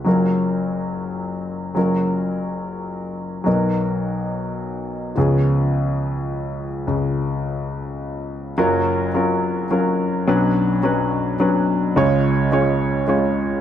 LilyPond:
<<
  \new Staff \with { instrumentName = "Upright piano" } { \time 3/4 \key fis \major \tempo 4 = 106 <fis cis' eis' ais'>2. | <fis cis' eis' ais'>2. | <fis b dis' ais'>2. | <eis b cis' gis'>2.~ |
<eis b cis' gis'>2. | <fis cis' eis' ais'>4 <fis cis' eis' ais'>4 <fis cis' eis' ais'>4 | <fis cis' d' b'>4 <fis cis' d' b'>4 <fis cis' d' b'>4 | <gis cis' eis' cis''>4 <gis cis' eis' cis''>4 <gis cis' eis' cis''>4 | }
  \new Staff \with { instrumentName = "Upright piano" } { \clef bass \time 3/4 \key fis \major <fis,, fis,>2. | <fis,, fis,>2. | <b,, b,>2. | <cis, cis>2. |
<cis, cis>2. | <fis,, fis,>2. | <b,, b,>2. | <cis, cis>2. | }
>>